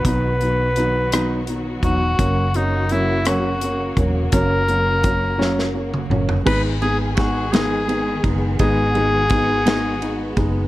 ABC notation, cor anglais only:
X:1
M:6/8
L:1/8
Q:3/8=56
K:G#m
V:1 name="Cor anglais"
B4 z F- | F D E F2 z | A4 z2 | B G F G2 z |
G4- G z |]